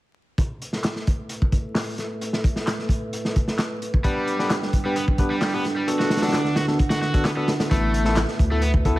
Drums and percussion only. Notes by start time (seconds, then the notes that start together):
0.38 kick, closed hi-hat
0.62 closed hi-hat
0.73 snare
0.83 snare, clap, closed hi-hat
0.96 snare
1.07 kick, closed hi-hat
1.29 closed hi-hat
1.42 kick
1.52 kick, closed hi-hat
1.75 snare, clap, open hi-hat
1.98 snare, closed hi-hat
2.21 closed hi-hat
2.33 snare
2.44 kick, closed hi-hat
2.56 snare
2.67 snare, clap, closed hi-hat
2.79 snare
2.89 kick, closed hi-hat
3.13 closed hi-hat
3.25 snare
3.36 kick, closed hi-hat
3.48 snare
3.58 snare, clap, closed hi-hat
3.82 closed hi-hat
3.94 kick
4.04 kick, closed hi-hat
4.28 closed hi-hat
4.39 snare
4.50 snare, clap, closed hi-hat
4.62 snare
4.73 kick, closed hi-hat
4.96 closed hi-hat
5.08 kick
5.18 kick, closed hi-hat
5.42 snare, clap, open hi-hat
5.65 snare, closed hi-hat
5.88 closed hi-hat
6.00 snare
6.10 snare, closed hi-hat
6.17 snare, closed hi-hat
6.22 snare, closed hi-hat
6.28 snare, closed hi-hat
6.33 snare, clap, closed hi-hat
6.44 snare
6.56 snare, closed hi-hat
6.68 snare
6.79 kick, closed hi-hat
6.90 snare, closed hi-hat
7.02 snare
7.14 kick, closed hi-hat
7.25 snare, clap, closed hi-hat
7.48 snare, closed hi-hat
7.60 snare, closed hi-hat
7.71 kick, closed hi-hat
7.94 closed hi-hat
8.05 snare
8.16 snare, clap, closed hi-hat
8.28 snare
8.39 kick, closed hi-hat
8.62 closed hi-hat
8.74 kick
8.85 kick, closed hi-hat